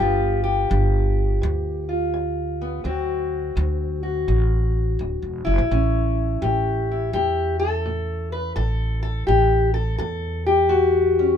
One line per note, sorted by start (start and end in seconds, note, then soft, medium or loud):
0.00 0.67 G1 medium
0.00 0.66 G2 medium
0.00 2.60 B3 soft
0.00 1.88 F4 soft
0.00 0.42 G4 medium
0.44 2.84 G4 medium
0.70 1.38 G1 loud
0.70 1.37 G2 medium
1.42 2.82 D2 loud
1.42 2.08 G2 medium
1.89 2.82 F4 soft
2.14 2.80 G2 medium
2.61 2.83 B3 medium
2.84 3.51 D2 medium
2.84 3.52 D2 medium
2.84 5.71 F#3 soft
2.84 5.44 C4 soft
2.84 4.02 F#4 soft
3.56 4.23 D2 medium
3.56 4.24 D2 loud
4.03 5.68 F#4 soft
4.28 4.95 A1 medium
4.28 4.94 D2 medium
4.99 5.20 D1 medium
4.99 5.67 D2 medium
5.22 5.44 E1 medium
5.45 5.58 F#1 medium
5.45 6.88 E4 medium
5.58 5.70 A1 medium
5.71 6.39 A1 medium
5.71 6.38 A2 medium
5.71 9.21 C#4 soft
6.42 7.10 A1 medium
6.42 7.09 A2 medium
6.42 7.12 G4 medium
6.91 10.41 E4 soft
7.13 8.52 E2 medium
7.13 7.81 A2 medium
7.13 7.59 G4 loud
7.59 8.31 A4 medium
7.86 8.52 A2 medium
8.32 8.55 B4 medium
8.56 9.24 A1 medium
8.56 9.23 A2 medium
8.56 9.01 A4 loud
9.03 9.26 A4 loud
9.27 9.95 A1 loud
9.27 9.94 A2 medium
9.27 9.73 G4 medium
9.74 9.97 A4 medium
9.98 11.37 E2 medium
9.98 10.66 A2 medium
9.98 10.46 A4 medium
10.46 11.37 G4 medium
10.69 11.37 A2 medium
10.69 11.37 F#4 medium
11.19 11.37 C#4 soft